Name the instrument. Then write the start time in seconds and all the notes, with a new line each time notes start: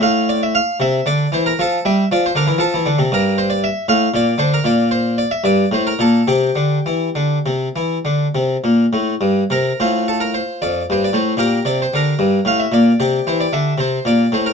harpsichord
0.01 A2 F5
0.29 D5
0.43 E5
0.55 F5
0.80 C3 E5
1.06 D3 D5
1.32 E3 C5
1.46 A#4
1.59 F3 A4
1.85 G3 E5
2.12 F3 D5
2.26 C5
2.35 D3 A#4
2.47 E3
2.58 F3 A4
2.74 E3
2.86 D3
2.99 C3
3.12 G2 A#4
3.38 C5
3.50 D5
3.64 E5
3.88 A2 F5
4.14 A#2 D5
4.38 D3 C5
4.54 A#4
4.64 A#2 D5
4.91 C5
5.18 D5
5.31 E5
5.44 G2 D5
5.71 A2 C5
5.87 A#4
5.99 A#2 A4
6.28 C3 G4
6.56 D3
6.86 E3
7.15 D3
7.46 C3
7.76 E3
8.05 D3
8.35 C3
8.64 A#2
8.93 A2
9.21 G2
9.50 C3 A#4
9.80 A2 F4 C5
10.08 A4
10.20 A#4
10.34 C5
10.62 F2 D5
10.90 G2 C5
11.04 D5
11.13 A2 C5
11.37 A#2 G4 A#4
11.65 C3 D5
11.82 C5
11.94 D3 A#4
12.19 G2
12.45 A2 F5
12.60 E5
12.72 A#2 D5
13.00 C3 G4
13.27 E3 C5
13.40 D5
13.53 D3 E5
13.78 C3 C5
14.05 A#2 D5
14.32 A2 C5
14.46 A#4